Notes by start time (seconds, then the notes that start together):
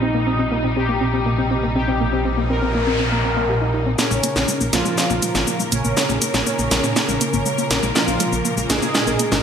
Already playing: A#1 A#2 C3 G3 D#4
0.02 C4 D#4
0.14 A#3
0.27 C4
0.39 C4
0.51 A#3
0.64 C4
0.76 C4 G4
0.89 A#3
1.01 C4
1.14 C4
1.26 A#3
1.38 C4
1.51 C4
1.63 A#3
1.75 C4 G4
1.88 C4
2.00 A#3, noise sweep
2.13 C4
2.25 C4
2.37 A#3
2.50 C4 A#4
2.62 C4
2.75 A#3
2.87 C4
3.00 C4
3.12 A#3
3.24 C4
3.37 A#3
3.49 G4
3.61 D#4
3.74 D#4
3.86 C4
3.99 A#2 C#3 A#3 C#4 A#4, snare, shaker
4.11 A#1 G#3, shaker
4.23 A#3, closed hi-hat, shaker
4.36 A#1 A#3, snare, shaker
4.48 G#3, shaker
4.61 A#1 A#3, shaker
4.73 A#1 F3 A#3 F4, snare, closed hi-hat, shaker
4.85 A#2 G#3, shaker
4.98 A#3, snare, shaker
5.10 A#1 A#3, shaker
5.22 G#3, closed hi-hat, shaker
5.35 G#1 A#3, snare, shaker
5.47 A#3, shaker
5.60 G#3, shaker
5.72 A#1 C#3 A#3 C#4, closed hi-hat, shaker
5.84 A#1 A#3, shaker
5.97 G#3, snare, shaker
6.09 A#1 A#3, shaker
6.22 A#3, closed hi-hat, shaker
6.34 A#1 G#3, snare, shaker
6.46 C#3 A#3 C#4, shaker
6.59 A#1 A#3, shaker
6.71 A#1 G#3, snare, closed hi-hat, shaker
6.84 A#2 A#3, shaker
6.96 A#3, snare, shaker
7.09 A#1 G#3, shaker
7.21 A#3, closed hi-hat, shaker
7.33 G#1 A#3, shaker
7.46 G#3, shaker
7.58 A#3, shaker
7.71 A#1 A#3, snare, closed hi-hat, shaker
7.83 A#1 G#3, shaker
7.95 F3 A#3 F4, snare, shaker
8.08 A#1 A#3, shaker
8.20 G#3, closed hi-hat, shaker
8.33 A#1 A#3, shaker
8.45 A#3, shaker
8.57 A#1 G#3, shaker
8.70 A#1 G#3 A#3 G#4, snare, closed hi-hat, shaker
8.82 A#2 A#3, shaker
8.95 G#3, snare, shaker
9.07 A#1 A#3, shaker
9.19 A#3, closed hi-hat, shaker
9.32 G#1 G#3, snare, shaker